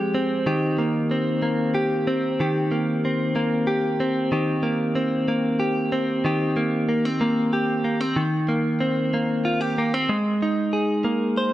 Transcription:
0.00 0.46 F3 medium
0.00 0.53 G#3 medium
0.00 0.14 C4 soft
0.00 0.47 G4 medium
0.15 0.81 C4 medium
0.46 2.40 D#3 medium
0.46 1.74 G4 medium
0.78 1.42 A#3 medium
1.11 2.07 C4 soft
1.42 2.71 A#3 medium
1.75 2.40 G4 medium
2.07 3.04 C4 medium
2.40 4.31 D#3 medium
2.40 3.67 G4 medium
2.71 3.35 A#3 medium
3.05 4.00 C4 soft
3.36 4.63 A#3 medium
3.67 4.32 G4 medium
4.00 4.95 C4 medium
4.32 6.24 D#3 medium
4.32 5.59 G4 soft
4.63 5.28 A#3 medium
4.95 5.92 C4 medium
5.28 6.56 A#3 medium
5.60 6.25 G4 medium
5.92 6.88 C4 medium
6.25 8.16 D#3 medium
6.25 7.53 G4 medium
6.56 6.89 A#3 medium
6.89 7.05 A#3 medium
7.05 7.84 C4 soft
7.21 7.84 A#3 medium
7.53 8.24 G4 medium
7.84 8.01 A#3 medium
8.01 8.24 C4 medium
8.16 10.09 D#3 medium
8.49 9.13 A#3 medium
8.80 9.78 C4 medium
9.14 9.78 A#3 medium
9.45 9.61 F4 medium
9.61 10.16 G4 medium
9.78 9.94 A#3 medium
9.94 10.17 C4 soft
10.09 11.53 G#3 medium
10.42 11.53 D#4 medium
10.73 11.53 G#4 medium
11.04 11.53 A#3 medium
11.38 11.53 C5 medium

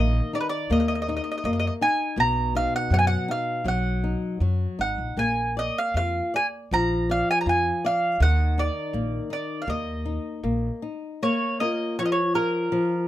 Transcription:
0.00 0.20 A#1 medium
0.00 0.66 D#3 medium
0.00 0.32 A#3 soft
0.00 0.31 D#5 medium
0.33 0.69 D#4 medium
0.33 0.40 D5 medium
0.41 0.47 B4 medium
0.49 0.70 D5 medium
0.70 1.18 D#2 medium
0.70 1.44 A#3 medium
0.70 0.78 D#5 medium
0.80 0.85 D#5 medium
0.88 0.93 D#5 medium
0.95 1.01 D#5 soft
1.02 1.07 D#5 medium
1.08 1.43 D#4 medium
1.08 1.15 D#5 soft
1.17 1.22 D#5 medium
1.24 1.29 D#5 soft
1.31 1.36 D#5 medium
1.38 1.43 D#5 medium
1.44 1.68 F#2 loud
1.44 1.80 A#3 medium
1.44 1.51 D#5 medium
1.53 1.58 D#5 medium
1.60 1.65 D#5 medium
1.67 1.73 D#5 medium
1.81 2.16 D#4 medium
1.81 2.19 G#5 medium
2.16 2.64 B1 medium
2.16 3.61 B2 medium
2.16 2.53 A#5 loud
2.55 2.90 D#4 medium
2.55 2.74 F5 medium
2.76 2.93 F#5 medium
2.90 3.15 F#2 medium
2.90 3.27 F#3 medium
2.90 2.98 F#5 medium
2.99 3.05 G#5 medium
3.07 3.30 F#5 medium
3.28 3.64 D#4 medium
3.28 3.68 F5 medium
3.64 4.14 B1 medium
3.64 4.40 F#3 medium
3.64 4.80 F#5 medium
4.04 4.40 D#4 medium
4.40 4.65 F#2 medium
4.40 4.78 F#3 medium
4.79 4.96 G#1 medium
4.79 5.16 D#4 soft
4.79 5.19 F#5 medium
4.98 5.15 A#1 medium
5.17 5.67 A#1 medium
5.17 6.68 A#3 medium
5.17 5.54 G#5 medium
5.57 5.94 D5 medium
5.57 5.77 D#5 medium
5.78 5.96 F5 medium
5.94 6.20 F2 medium
5.94 6.33 F4 medium
5.94 6.35 F5 medium
6.34 6.71 D5 medium
6.34 6.46 G#5 medium
6.71 7.20 A#1 medium
6.71 8.17 F3 medium
6.71 7.11 A#5 medium
7.10 7.46 D5 medium
7.10 7.30 F5 medium
7.31 7.40 G#5 medium
7.41 7.47 A#5 medium
7.46 7.70 F2 medium
7.46 7.83 F4 medium
7.46 7.86 G#5 medium
7.85 8.20 D5 medium
7.85 8.22 F5 medium
8.20 8.68 D#2 medium
8.20 9.64 D#3 medium
8.20 8.59 F#5 medium
8.58 8.93 D#4 medium
8.58 9.32 D5 medium
8.93 9.18 A#1 medium
8.93 9.30 A#3 medium
9.30 9.67 D#4 medium
9.30 9.60 D5 medium
9.62 9.68 F5 medium
9.67 10.17 D#2 medium
9.67 10.43 A#3 medium
9.67 10.79 D#5 medium
10.06 10.43 D#4 medium
10.44 10.69 A#1 medium
10.44 10.81 A#3 medium
10.82 11.20 D#4 medium
11.23 11.96 A#3 medium
11.23 11.60 C#5 medium
11.60 12.20 F4 soft
11.60 12.20 A#4 soft
11.60 12.20 C#5 medium
11.60 11.98 D#5 medium
11.99 12.70 F3 medium
11.99 12.02 C#5 medium
12.06 12.12 D#5 medium
12.12 12.33 C#5 medium
12.34 12.93 F4 soft
12.34 12.94 A#4 soft
12.34 13.08 A#4 medium
12.34 12.94 C#5 medium
12.72 13.08 F3 medium

